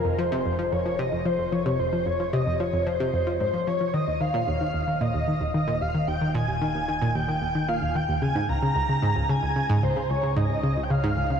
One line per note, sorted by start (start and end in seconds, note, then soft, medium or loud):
0.00 3.91 F1 medium
0.00 0.21 A#4 medium
0.05 0.09 F2 medium
0.19 0.23 F3 medium
0.19 0.72 C5 loud
0.32 0.39 C3 loud
0.46 0.52 F2 medium
0.59 0.63 F3 medium
0.72 0.76 F2 medium
0.72 1.01 C#5 loud
0.86 0.90 F3 medium
0.99 1.06 C3 loud
0.99 1.27 D#5 loud
1.12 1.19 F2 medium
1.25 1.30 F3 medium
1.25 1.54 C5 loud
1.39 1.43 F2 medium
1.52 1.56 F3 medium
1.52 1.81 C#5 medium
1.66 1.73 C3 medium
1.79 1.86 F2 medium
1.79 2.08 C5 loud
1.93 1.97 F3 medium
2.06 2.10 F2 medium
2.06 2.34 C#5 medium
2.20 2.24 F3 medium
2.33 2.40 C3 loud
2.33 2.61 D#5 loud
2.47 2.53 F2 medium
2.60 2.64 F3 medium
2.60 2.88 C#5 loud
2.73 2.77 F2 medium
2.87 2.91 F3 medium
2.87 3.39 C5 loud
3.00 3.07 C3 loud
3.14 3.20 F2 medium
3.27 3.37 F3 medium
3.40 3.47 G#2 medium
3.40 3.69 C5 loud
3.54 3.60 F3 medium
3.67 3.71 F3 medium
3.67 3.95 C#5 loud
3.81 3.84 F3 medium
3.94 8.20 D#1 medium
3.94 3.98 D#3 medium
3.94 4.22 D#5 loud
4.07 4.11 D#2 medium
4.21 4.24 D#3 medium
4.21 5.00 F5 loud
4.34 4.41 A#2 loud
4.47 4.54 D#2 medium
4.61 4.65 D#3 medium
4.74 4.78 D#2 medium
4.88 4.91 D#3 medium
5.01 5.08 A#2 loud
5.01 5.51 D#5 loud
5.14 5.21 D#2 medium
5.28 5.32 D#3 medium
5.41 5.45 D#2 medium
5.54 5.58 D#3 medium
5.54 5.83 D#5 loud
5.68 5.74 A#2 loud
5.81 5.88 D#2 medium
5.81 6.09 F5 loud
5.95 5.99 D#3 medium
6.08 6.12 D#2 medium
6.08 6.34 G5 loud
6.21 6.25 D#3 medium
6.34 6.41 A#2 loud
6.34 7.17 G#5 loud
6.48 6.55 D#2 medium
6.61 6.66 D#3 medium
6.75 6.79 D#2 medium
6.88 6.92 D#3 medium
7.02 7.08 A#2 loud
7.15 7.22 D#2 medium
7.15 7.70 G5 loud
7.28 7.32 D#3 medium
7.42 7.46 D#2 medium
7.55 7.59 D#3 medium
7.68 7.75 A#2 medium
7.68 7.97 F5 loud
7.82 7.89 D#2 medium
7.95 7.99 D#3 medium
7.95 8.22 G5 loud
8.09 8.13 D#2 medium
8.22 11.40 C#2 medium
8.22 8.26 C#3 medium
8.22 8.47 G#5 loud
8.35 8.42 G#2 loud
8.49 8.56 C#2 medium
8.49 9.32 A#5 loud
8.62 8.66 C#3 medium
8.76 8.80 C#2 medium
8.89 8.93 C#3 medium
9.02 9.09 G#2 loud
9.16 9.23 C#2 medium
9.29 9.33 C#3 medium
9.29 9.85 G#5 loud
9.43 9.47 C#2 medium
9.56 9.60 C#3 medium
9.70 9.76 G#2 loud
9.83 9.90 C#2 medium
9.83 10.12 C5 loud
9.96 10.00 C#3 medium
10.10 10.14 C#2 medium
10.10 10.36 C#5 medium
10.23 10.27 C#3 medium
10.37 10.43 G#2 medium
10.37 10.85 D#5 loud
10.50 10.57 C#2 medium
10.63 10.67 C#3 medium
10.77 10.81 C#2 medium
10.83 10.92 G5 medium
10.90 10.94 C#3 medium
10.90 11.40 F5 loud
11.04 11.10 G#2 loud
11.17 11.24 C#2 medium
11.30 11.34 C#3 medium